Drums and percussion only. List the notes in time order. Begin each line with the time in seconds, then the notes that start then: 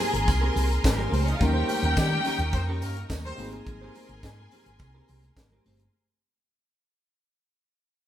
0.00 open hi-hat, tambourine, muted conga, low conga
0.14 closed hi-hat
0.28 kick, closed hi-hat, tambourine
0.56 open hi-hat, tambourine, muted conga
0.72 closed hi-hat
0.84 kick, snare, closed hi-hat, tambourine, muted conga, high conga
0.99 high conga, low conga
1.13 open hi-hat, high conga
1.28 closed hi-hat
1.41 kick, closed hi-hat, tambourine, low conga
1.69 open hi-hat, tambourine, high conga
1.83 closed hi-hat
1.96 kick, snare, closed hi-hat, tambourine, muted conga
2.13 high conga
2.25 open hi-hat, tambourine, muted conga, low conga
2.39 closed hi-hat
2.53 kick, closed hi-hat, tambourine, muted conga
2.82 open hi-hat, tambourine, muted conga
2.97 closed hi-hat
3.10 kick, snare, closed hi-hat, tambourine, high conga
3.26 high conga, low conga
3.38 open hi-hat, tambourine, high conga
3.52 closed hi-hat
3.66 kick, closed hi-hat, low conga
3.95 open hi-hat, tambourine, muted conga, high conga
4.09 closed hi-hat
4.23 kick, snare, closed hi-hat, tambourine, muted conga
4.39 high conga
4.51 open hi-hat, tambourine, low conga
4.66 closed hi-hat
4.79 kick, closed hi-hat, tambourine
5.08 open hi-hat, tambourine, muted conga
5.23 closed hi-hat, high conga
5.36 kick, snare, closed hi-hat, tambourine, high conga
5.52 high conga, low conga
5.65 open hi-hat, muted conga, high conga
5.79 closed hi-hat